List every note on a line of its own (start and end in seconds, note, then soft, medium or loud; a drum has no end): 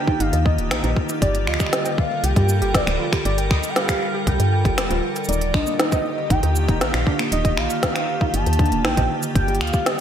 0.00 1.18 D3 medium
0.00 1.18 D#3 medium
0.00 1.18 A#3 medium
0.00 5.25 F4 medium
0.00 1.18 G4 medium
0.00 0.22 G5 loud
0.07 0.18 D#4 medium
0.07 kick loud
0.20 0.31 G1 medium
0.20 0.31 D#4 loud
0.20 0.45 F5 loud
0.20 closed hi-hat medium
0.33 0.60 D#2 medium
0.33 0.39 D#5 loud
0.33 closed hi-hat soft
0.46 0.93 D#5 medium
0.46 kick loud
0.58 0.73 D#1 loud
0.58 closed hi-hat soft
0.71 0.82 A#1 medium
0.71 0.83 D#4 medium
0.71 finger snap medium
0.71 snare loud
0.71 closed hi-hat medium
0.84 0.94 A#1 loud
0.84 0.96 D#4 loud
0.84 closed hi-hat soft
0.96 kick loud
1.09 1.16 D#4 loud
1.09 closed hi-hat soft
1.09 shaker medium
1.22 1.49 G1 loud
1.22 10.00 D3 medium
1.22 5.25 G3 medium
1.22 1.34 G4 medium
1.22 5.25 A4 medium
1.22 5.25 A#4 medium
1.22 1.49 D5 loud
1.22 kick loud
1.22 closed hi-hat medium
1.35 closed hi-hat medium
1.47 1.58 D2 medium
1.47 1.54 F4 loud
1.47 2.00 D#5 loud
1.47 finger snap medium
1.54 finger snap soft
1.60 1.71 G4 medium
1.60 finger snap soft
1.60 kick loud
1.60 shaker medium
1.66 finger snap soft
1.73 1.83 G4 loud
1.73 snare loud
1.73 closed hi-hat medium
1.85 1.92 G5 loud
1.85 closed hi-hat soft
1.85 shaker medium
1.98 2.25 F5 loud
1.98 kick loud
2.24 2.34 C2 medium
2.24 2.35 G4 medium
2.24 2.76 G5 loud
2.24 closed hi-hat medium
2.36 2.63 G2 medium
2.36 2.48 G4 loud
2.36 kick loud
2.36 closed hi-hat medium
2.49 shaker medium
2.62 2.76 G1 loud
2.62 2.68 G4 loud
2.62 closed hi-hat soft
2.74 2.85 F1 medium
2.74 2.87 G4 medium
2.74 3.13 D5 loud
2.74 kick loud
2.74 snare loud
2.74 closed hi-hat medium
2.87 2.98 D1 loud
2.87 finger snap medium
2.87 closed hi-hat medium
3.00 3.06 F4 loud
3.13 3.23 G4 medium
3.13 finger snap medium
3.13 kick loud
3.13 closed hi-hat soft
3.25 3.52 G1 loud
3.25 3.36 G4 loud
3.25 3.37 D5 loud
3.25 closed hi-hat medium
3.38 3.44 G5 loud
3.38 closed hi-hat medium
3.51 3.61 D2 medium
3.51 3.71 D#5 medium
3.51 finger snap medium
3.51 kick loud
3.63 closed hi-hat soft
3.63 shaker medium
3.69 3.78 G5 medium
3.76 3.88 G4 medium
3.76 4.28 F5 loud
3.76 snare loud
3.76 closed hi-hat medium
3.89 4.01 G4 loud
3.89 finger snap medium
3.89 kick loud
3.89 closed hi-hat medium
3.89 shaker medium
4.14 4.21 G4 loud
4.27 4.38 C2 medium
4.27 4.39 G4 medium
4.27 4.78 G5 loud
4.27 kick loud
4.27 closed hi-hat medium
4.40 4.67 G2 medium
4.40 closed hi-hat medium
4.52 4.65 G5 medium
4.65 4.79 G1 loud
4.65 4.76 G4 medium
4.65 kick loud
4.65 closed hi-hat soft
4.78 4.88 F1 medium
4.78 4.88 G4 medium
4.78 finger snap medium
4.78 snare loud
4.78 closed hi-hat medium
4.91 5.01 D1 loud
4.91 5.03 F4 loud
4.91 closed hi-hat medium
5.03 5.14 G5 medium
5.16 5.27 G5 medium
5.16 closed hi-hat soft
5.16 shaker soft
5.25 shaker soft
5.29 5.56 D#1 loud
5.29 9.31 D#3 medium
5.29 9.31 A#3 medium
5.29 5.41 D#4 medium
5.29 10.00 F4 medium
5.29 9.31 G4 medium
5.29 5.56 D5 medium
5.29 closed hi-hat medium
5.33 shaker medium
5.41 closed hi-hat medium
5.54 5.65 A#1 medium
5.54 5.60 D4 loud
5.54 6.32 D#5 loud
5.54 finger snap medium
5.54 kick loud
5.67 5.79 A#3 medium
5.67 shaker medium
5.80 5.90 D#4 loud
5.80 snare loud
5.80 closed hi-hat medium
5.92 5.99 D#5 loud
5.92 kick loud
5.92 closed hi-hat medium
5.92 shaker medium
6.30 6.41 G1 medium
6.30 6.42 D#4 medium
6.30 6.83 G5 loud
6.30 kick loud
6.30 closed hi-hat medium
6.43 6.70 D#2 medium
6.43 6.55 D#4 loud
6.43 closed hi-hat medium
6.56 shaker medium
6.68 6.83 D#1 loud
6.68 6.75 D#4 loud
6.68 kick loud
6.68 closed hi-hat soft
6.81 6.92 A#1 medium
6.81 6.93 D#4 medium
6.81 7.19 F5 loud
6.81 snare loud
6.81 closed hi-hat medium
6.94 7.04 A#1 loud
6.94 finger snap medium
6.94 closed hi-hat medium
7.07 7.13 D4 loud
7.07 kick loud
7.19 7.31 A#3 medium
7.19 finger snap medium
7.19 closed hi-hat soft
7.32 7.59 D#1 loud
7.32 7.43 D#4 loud
7.32 7.59 D#5 loud
7.32 closed hi-hat medium
7.45 7.51 D#5 loud
7.45 kick loud
7.45 closed hi-hat medium
7.57 7.68 A#1 medium
7.57 8.35 F5 loud
7.57 finger snap medium
7.70 closed hi-hat soft
7.70 shaker medium
7.83 7.94 D#4 medium
7.83 kick loud
7.83 snare loud
7.83 closed hi-hat medium
7.96 8.08 D#4 loud
7.96 finger snap medium
7.96 closed hi-hat medium
8.21 8.27 D#4 loud
8.21 kick loud
8.34 8.44 G1 medium
8.34 8.46 D#4 medium
8.34 8.86 A5 loud
8.34 closed hi-hat medium
8.46 8.73 D#2 loud
8.46 closed hi-hat medium
8.53 closed hi-hat soft
8.59 8.66 D4 loud
8.59 kick loud
8.59 closed hi-hat soft
8.66 closed hi-hat soft
8.72 8.86 D#1 loud
8.72 8.84 A#3 medium
8.72 closed hi-hat soft
8.85 8.95 A#1 medium
8.85 8.95 D#4 loud
8.85 9.23 G5 loud
8.85 finger snap medium
8.85 snare loud
8.97 9.08 A#1 loud
8.97 9.04 D#5 loud
8.97 kick loud
8.97 closed hi-hat medium
9.23 closed hi-hat soft
9.23 shaker medium
9.35 9.62 G1 loud
9.35 10.00 G3 medium
9.35 9.47 G4 medium
9.35 10.00 A4 medium
9.35 10.00 A#4 loud
9.35 9.62 G5 loud
9.35 kick loud
9.35 closed hi-hat medium
9.48 9.60 G4 loud
9.48 closed hi-hat soft
9.55 closed hi-hat soft
9.61 9.71 D2 medium
9.61 9.88 F5 loud
9.61 finger snap medium
9.61 closed hi-hat soft
9.67 closed hi-hat soft
9.74 9.80 G4 loud
9.74 kick loud
9.74 shaker medium
9.86 9.98 G4 medium
9.86 10.00 D#5 loud
9.86 snare loud
9.86 closed hi-hat medium